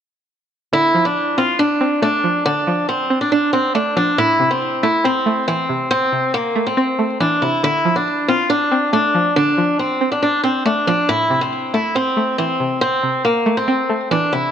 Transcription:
0.73 1.81 D3 loud
0.73 1.04 E4 loud
0.94 2.02 F3 medium
1.05 1.36 D4 medium
1.38 1.80 C4 medium
1.38 1.58 F4 medium
1.59 2.00 D4 medium
1.59 2.67 D4 medium
1.81 2.89 C4 medium
2.02 3.10 A3 medium
2.02 2.43 D4 medium
2.24 2.66 F3 medium
2.46 3.54 D3 loud
2.46 2.86 D4 loud
2.67 3.75 F3 medium
2.89 3.19 C4 medium
3.10 3.52 C4 medium
3.21 3.31 D4 medium
3.32 3.52 D4 medium
3.32 4.18 D4 medium
3.53 3.74 C4 medium
3.53 4.18 C4 medium
3.75 4.18 A3 medium
3.75 3.95 D4 medium
3.96 4.18 F3 medium
3.96 4.17 D4 medium
4.18 5.26 A2 medium
4.18 4.49 E4 loud
4.40 5.48 C3 medium
4.51 4.81 C4 medium
4.83 5.25 A3 medium
4.83 5.03 E4 medium
5.04 6.12 C4 medium
5.04 5.45 C4 medium
5.26 6.34 A3 medium
5.48 6.56 E3 medium
5.48 5.88 C4 medium
5.69 6.11 C3 medium
5.91 6.31 C4 loud
6.12 7.20 C3 medium
6.34 6.64 A#3 medium
6.55 6.98 A3 medium
6.67 7.17 C4 medium
6.77 7.64 C4 loud
6.99 7.64 A3 medium
7.20 7.64 E3 medium
7.20 7.41 D4 medium
7.42 7.64 C3 medium
7.42 7.62 E4 medium
7.63 8.71 D3 loud
7.63 7.94 E4 loud
7.85 8.93 F3 medium
7.96 8.26 D4 medium
8.28 8.70 C4 medium
8.28 8.49 F4 medium
8.50 8.90 D4 medium
8.50 9.58 D4 medium
8.71 9.79 C4 medium
8.93 10.01 A3 medium
8.93 9.34 D4 medium
9.15 9.57 F3 medium
9.36 10.44 D3 loud
9.36 9.77 D4 loud
9.58 10.66 F3 medium
9.79 10.10 C4 medium
10.01 10.43 C4 medium
10.12 10.21 D4 medium
10.22 10.43 D4 medium
10.22 11.09 D4 medium
10.43 10.64 C4 medium
10.43 11.09 C4 medium
10.65 11.09 A3 medium
10.65 10.86 D4 medium
10.87 11.09 F3 medium
10.87 11.08 D4 medium
11.09 12.17 A2 medium
11.09 11.39 E4 loud
11.30 12.38 C3 medium
11.41 11.72 C4 medium
11.74 12.16 A3 medium
11.74 11.94 E4 medium
11.95 13.03 C4 loud
11.95 12.36 C4 medium
12.17 13.25 A3 medium
12.38 13.46 E3 medium
12.38 12.79 C4 medium
12.60 13.02 C3 medium
12.81 13.22 C4 loud
13.03 14.11 C3 medium
13.25 13.55 A#3 medium
13.46 13.88 A3 medium
13.57 14.08 C4 medium
13.68 14.52 C4 loud
13.89 14.52 A3 medium
14.11 14.52 E3 medium
14.11 14.31 D4 medium
14.33 14.52 C3 medium
14.33 14.52 E4 medium

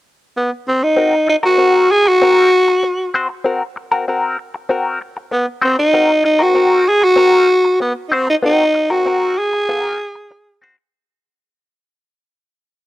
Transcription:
0.37 0.51 B3 medium
0.68 0.85 C4 medium
0.83 1.29 D#4 loud
0.96 1.13 C4 medium
0.96 1.14 F#4 medium
0.96 1.14 A#4 medium
1.28 1.36 D#4 medium
1.28 muted clean electric guitar stroke soft
1.43 1.57 C4 soft
1.43 1.56 F#4 medium
1.43 1.93 F#4 loud
1.43 1.56 A#4 medium
1.58 1.87 C4 medium
1.58 1.88 F#4 loud
1.58 1.88 A#4 loud
1.90 2.09 G#4 loud
1.90 muted clean electric guitar stroke soft
2.06 3.15 F#4 loud
2.06 muted clean electric guitar stroke soft
2.22 2.50 C4 medium
2.22 2.50 F#4 loud
2.22 2.51 A#4 loud
2.52 muted clean electric guitar stroke soft
2.68 muted clean electric guitar stroke medium
2.83 muted clean electric guitar stroke soft
3.14 3.27 C4 medium
3.14 3.27 F#4 medium
3.14 3.28 C5 medium
3.29 muted clean electric guitar stroke soft
3.44 3.61 C4 medium
3.44 3.62 F#4 medium
3.44 3.62 A#4 medium
3.76 muted clean electric guitar stroke soft
3.92 4.05 C4 medium
3.92 4.05 F#4 medium
3.92 4.04 A#4 medium
4.08 4.36 C4 medium
4.08 4.36 F#4 loud
4.08 4.37 A#4 loud
4.38 muted clean electric guitar stroke soft
4.54 muted clean electric guitar stroke soft
4.69 4.98 C4 medium
4.69 4.98 F#4 medium
4.69 4.99 A#4 medium
5.01 muted clean electric guitar stroke soft
5.17 muted clean electric guitar stroke soft
5.31 5.46 B3 medium
5.31 muted clean electric guitar stroke soft
5.62 5.75 C4 medium
5.62 5.78 C4 medium
5.62 5.75 F#4 medium
5.62 5.76 C5 medium
5.77 6.22 D#4 loud
5.77 muted clean electric guitar stroke soft
5.94 6.10 C4 medium
5.94 6.10 F#4 medium
5.94 6.10 A#4 medium
6.24 6.44 D#4 loud
6.24 muted clean electric guitar stroke soft
6.39 6.53 C4 medium
6.39 6.53 F#4 medium
6.39 6.90 F#4 medium
6.39 6.53 A#4 medium
6.55 6.84 C4 medium
6.55 6.84 F#4 medium
6.55 6.85 A#4 loud
6.86 7.05 G#4 loud
6.86 muted clean electric guitar stroke soft
7.02 7.81 F#4 loud
7.02 muted clean electric guitar stroke soft
7.16 7.46 C4 medium
7.16 7.46 F#4 medium
7.16 7.47 A#4 loud
7.49 muted clean electric guitar stroke soft
7.65 muted clean electric guitar stroke medium
7.80 7.93 B3 medium
7.80 muted clean electric guitar stroke soft
8.09 8.25 C4 medium
8.09 8.15 D#4 medium
8.09 8.25 F#4 medium
8.13 8.28 C4 medium
8.13 8.26 C5 medium
8.27 8.36 D#4 medium
8.27 muted clean electric guitar stroke medium
8.43 8.63 C4 medium
8.43 8.92 D#4 loud
8.43 8.64 F#4 medium
8.43 8.64 A#4 medium
8.74 muted clean electric guitar stroke soft
8.90 9.04 C4 soft
8.90 9.40 F#4 loud
8.90 9.03 F#4 medium
8.90 9.03 A#4 medium
9.05 9.34 C4 medium
9.05 9.35 F#4 loud
9.05 9.35 A#4 loud
9.38 10.63 G#4 loud
9.38 muted clean electric guitar stroke soft
9.53 muted clean electric guitar stroke soft
9.69 9.81 B3 medium
9.69 9.81 F4 medium
9.69 9.82 A4 medium
9.81 9.97 C4 medium
9.81 9.97 F#4 medium
9.81 9.98 A#4 medium
9.99 muted clean electric guitar stroke soft
10.15 muted clean electric guitar stroke soft
10.31 muted clean electric guitar stroke soft
10.62 10.75 C4 medium
10.62 10.75 F#4 medium
10.62 10.76 C5 medium

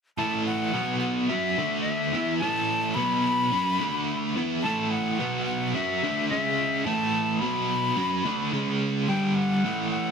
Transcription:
0.17 0.73 A2 medium
0.17 0.73 E3 medium
0.17 0.73 A3 loud
0.17 0.43 A5 medium
0.46 0.97 F#5 medium
0.74 1.28 B2 medium
0.74 1.29 F#3 medium
0.74 1.29 B3 loud
1.00 1.26 F#5 medium
1.27 1.56 F#3 medium
1.27 1.56 C#4 medium
1.27 1.57 F#4 medium
1.27 1.80 E5 medium
1.58 2.12 D3 medium
1.58 2.13 A3 medium
1.58 2.13 D4 medium
1.81 2.34 E5 medium
2.13 2.40 E3 medium
2.13 2.40 B3 medium
2.13 2.40 E4 loud
2.38 2.96 A5 loud
2.42 2.96 A2 medium
2.42 2.96 E3 medium
2.42 2.96 A3 loud
2.94 3.51 B2 medium
2.94 3.51 F#3 medium
2.94 3.52 B3 medium
2.94 4.34 B5 medium
3.52 3.79 F#3 medium
3.52 3.79 C#4 loud
3.52 3.79 F#4 medium
3.81 4.35 D3 medium
3.81 4.35 A3 medium
3.81 4.35 D4 medium
4.36 4.63 E3 medium
4.36 4.63 B3 loud
4.36 4.63 E4 loud
4.63 5.18 A2 loud
4.63 5.19 E3 medium
4.63 5.19 A3 loud
4.63 4.92 A5 loud
4.91 5.45 F#5 medium
5.19 5.74 B2 medium
5.19 5.73 F#3 medium
5.19 5.74 B3 loud
5.46 5.76 F#5 medium
5.74 6.01 F#3 medium
5.74 6.02 C#4 medium
5.74 6.02 F#4 medium
5.74 6.28 E5 medium
6.03 6.29 D3 medium
6.03 6.30 A3 medium
6.03 6.30 D4 loud
6.29 6.85 C#3 medium
6.29 6.85 G#3 medium
6.29 6.85 C#4 medium
6.29 6.86 E5 medium
6.85 7.40 A2 medium
6.85 7.40 E3 medium
6.85 7.41 A3 loud
6.85 7.41 A5 medium
7.39 7.96 B2 medium
7.39 7.96 F#3 medium
7.39 7.96 B3 loud
7.39 8.79 B5 medium
7.97 8.24 F#3 medium
7.97 8.24 C#4 medium
7.97 8.24 F#4 medium
8.25 8.51 D3 medium
8.25 8.52 A3 medium
8.25 8.52 D4 medium
8.53 9.07 C#3 medium
8.53 9.07 G#3 medium
8.53 9.07 C#4 medium
9.08 9.62 G2 medium
9.08 9.63 D3 medium
9.08 9.63 G3 medium
9.08 9.36 G5 medium
9.35 9.90 F#5 medium
9.64 10.11 A2 medium
9.64 10.11 E3 medium
9.64 10.11 A3 medium
9.91 10.11 F#5 medium

